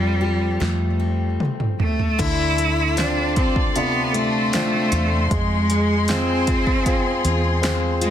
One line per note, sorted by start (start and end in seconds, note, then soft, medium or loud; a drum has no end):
0.00 0.57 F2 medium
0.00 0.21 F3 medium
0.00 1.98 F3 medium
0.00 1.36 G3 medium
0.00 0.60 A3 medium
0.00 0.99 C4 soft
0.00 0.20 F4 medium
0.21 0.59 F3 soft
0.21 1.48 G4 medium
0.60 1.36 F2 medium
0.60 1.38 F3 soft
0.60 1.98 A3 medium
0.60 snare soft
1.00 1.98 C4 soft
1.40 mid tom medium
1.60 mid tom medium
1.80 2.20 A3 medium
1.80 floor tom medium
1.99 floor tom medium
2.18 4.88 D2 medium
2.18 5.31 D3 medium
2.18 5.28 D3 medium
2.18 2.99 E4 loud
2.18 5.28 A4 medium
2.18 5.28 D5 medium
2.18 8.10 C6 medium
2.18 kick loud
2.18 closed hi-hat medium
2.18 crash medium
2.58 5.39 A3 medium
2.58 closed hi-hat medium
2.97 3.73 C4 soft
2.97 4.53 C4 medium
2.97 3.36 D4 medium
2.97 3.73 D4 soft
2.97 3.74 F4 soft
2.97 snare medium
2.97 closed hi-hat medium
3.36 3.54 C4 medium
3.36 4.14 F4 medium
3.36 kick medium
3.36 closed hi-hat soft
3.56 kick medium
3.75 4.51 C3 soft
3.75 4.15 B3 medium
3.75 4.51 D4 soft
3.75 4.51 F4 soft
3.75 closed hi-hat medium
4.14 5.30 A3 medium
4.14 4.92 F4 medium
4.14 closed hi-hat medium
4.53 5.29 C4 soft
4.53 6.08 C4 medium
4.53 5.29 D4 soft
4.53 5.29 F4 medium
4.53 snare loud
4.53 closed hi-hat medium
4.92 5.29 E2 medium
4.92 6.47 F4 medium
4.92 closed hi-hat medium
5.31 7.21 F2 medium
5.31 6.11 G#3 medium
5.31 8.10 G#3 medium
5.31 8.10 G#4 medium
5.31 kick medium
5.31 closed hi-hat medium
5.70 8.10 G#3 medium
5.70 closed hi-hat medium
6.08 6.84 C4 soft
6.08 6.86 C4 medium
6.08 7.63 C4 medium
6.08 6.84 F4 soft
6.08 6.84 G#4 soft
6.08 snare loud
6.08 closed hi-hat medium
6.47 7.23 F4 medium
6.47 kick medium
6.47 closed hi-hat medium
6.67 kick medium
6.86 7.61 C4 soft
6.86 7.63 C4 medium
6.86 7.61 F4 soft
6.86 7.61 G#4 soft
6.86 kick medium
6.86 closed hi-hat medium
7.24 8.10 E2 medium
7.24 8.00 F4 medium
7.24 closed hi-hat medium
7.62 8.10 C4 soft
7.62 8.10 C4 medium
7.62 8.10 F4 soft
7.62 8.10 G#4 medium
7.62 snare loud
7.62 closed hi-hat medium
8.01 8.10 G#3 medium
8.01 8.10 F4 medium
8.01 closed hi-hat medium